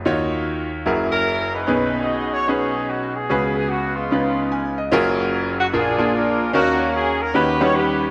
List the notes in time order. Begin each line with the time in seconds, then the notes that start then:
0.05 D#2 D#3 D#4 F4 F#4 C#5
0.86 F#1 F#2 E4 F#4 G#4 A#4
1.12 C#4 E4 A#4
1.53 D#4 G#4 B4
1.67 B1 B2 C#4 D#4 G#4 B4
2.00 F#4 G#4 D#5
2.32 C#5
2.48 C#4 D#4 G#4 B4
2.88 F#4
3.15 B3 G#4
3.29 C#2 C#3 C#4 F#4 G#4 B4
3.54 G#4
3.69 F#4
3.95 G#3 B3 F4
4.11 C#2 C#3 C#4 D#4 F4 B4
4.52 G#5
4.78 D#5
4.92 F#1 F#2 C#4 F4 F#4 G#4 A#4
5.60 F#4
5.73 A#1 A#2 A#3 D4 F4 G#4 A#4
5.98 A#3 D4 F4 G#4 A#4
6.14 D4 F4 A#4
6.53 D#2 D#3 A#3 C#4 D#4 F#4 A#4 F5
6.95 G#4
7.21 A#4
7.34 D#2 D#3 C#4 D#4 F#4 G4 B4
7.60 G3 C#4 D#4 B4 C#5 F#5
7.75 F#4 G4 B4